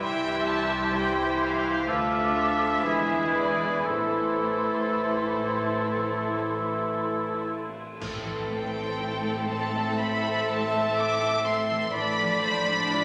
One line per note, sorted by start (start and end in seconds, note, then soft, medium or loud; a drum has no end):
0.00 1.84 C2 medium
0.00 1.92 C3 medium
0.00 0.90 E3 medium
0.00 0.31 G3 soft
0.00 1.57 G3 soft
0.00 0.89 G3 medium
0.00 0.92 E4 soft
0.00 1.57 E4 soft
0.00 0.90 E4 medium
0.00 0.62 G4 soft
0.00 1.90 G4 medium
0.00 0.92 E5 medium
0.00 0.45 G5 loud
0.00 1.83 C6 medium
0.32 1.92 G3 soft
0.49 0.95 A5 medium
0.63 1.24 G4 soft
0.92 1.86 E3 medium
0.92 1.85 G3 medium
0.92 1.56 E4 soft
0.92 1.86 E4 medium
0.92 1.87 C5 medium
0.96 1.42 G5 medium
1.25 1.92 G4 soft
1.43 1.88 F5 medium
1.57 1.92 E4 soft
1.88 2.84 D2 medium
1.88 2.88 D3 soft
1.88 2.85 F3 medium
1.88 2.82 A3 medium
1.88 2.83 A3 medium
1.88 2.87 D4 medium
1.88 2.84 F4 medium
1.88 2.85 F4 medium
1.88 2.87 A4 medium
1.88 2.36 B4 medium
1.88 3.36 E5 medium
1.88 2.85 D6 medium
2.20 2.51 D4 soft
2.35 2.84 A4 medium
2.52 3.90 D4 soft
2.52 2.88 F4 soft
2.81 3.84 E1 medium
2.81 3.84 E2 medium
2.81 7.68 E3 medium
2.81 3.90 E3 medium
2.81 3.84 G#3 medium
2.81 3.85 E4 soft
2.81 3.85 E4 medium
2.81 3.33 G#4 medium
2.81 3.85 B5 soft
2.85 7.69 E4 medium
2.85 3.87 G#4 soft
3.17 3.50 B3 soft
3.32 3.85 B4 medium
3.36 3.87 D5 medium
3.51 3.90 B3 soft
3.51 4.55 E4 soft
3.84 7.81 A1 soft
3.84 7.75 A2 soft
3.84 7.81 A2 soft
3.84 7.81 A3 soft
3.84 7.68 A3 medium
3.84 7.64 E4 medium
3.84 7.77 E4 soft
3.84 7.45 A4 medium
3.84 7.68 A4 soft
3.84 7.67 C6 medium
3.88 7.00 C5 medium
4.20 6.28 A3 soft
4.56 5.24 E4 soft
4.91 6.98 A4 soft
5.25 6.62 E4 soft
5.60 7.66 C4 soft
5.95 8.06 E3 soft
6.29 8.49 A3 soft
6.64 7.32 E4 soft
6.99 9.23 A4 soft
7.33 8.98 E4 soft
7.67 8.74 C4 soft
8.00 11.91 A1 medium
8.00 11.90 A2 medium
8.00 11.91 A2 medium
8.00 11.91 C4 medium
8.00 11.91 A4 medium
8.00 concert bass drum medium
8.00 crash medium
8.25 11.69 E3 soft
8.50 11.44 A3 soft
8.50 9.47 G5 medium
8.75 11.98 C4 soft
9.00 11.21 E4 soft
9.24 10.96 A4 medium
9.49 9.98 C5 medium
9.49 10.00 A5 medium
9.75 10.23 E5 medium
9.99 10.48 C5 medium
9.99 11.90 E5 medium
9.99 10.49 B5 medium
10.25 10.72 E5 medium
10.49 11.99 C5 soft
10.49 10.98 A5 medium
10.74 11.99 E5 medium
10.97 13.04 A4 medium
10.97 11.46 D6 loud
11.22 11.99 E4 medium
11.46 12.42 A3 medium
11.46 11.95 C6 medium
11.70 11.99 E3 soft
11.93 13.04 A1 medium
11.93 13.04 A2 medium
11.93 13.04 D4 medium
11.93 12.42 D5 medium
11.93 13.04 D5 medium
11.93 13.04 B5 loud
12.19 13.04 F3 medium
12.43 13.04 A3 medium
12.43 12.93 C5 medium
12.68 13.04 D4 medium
12.92 13.04 F4 medium
12.92 13.04 D5 medium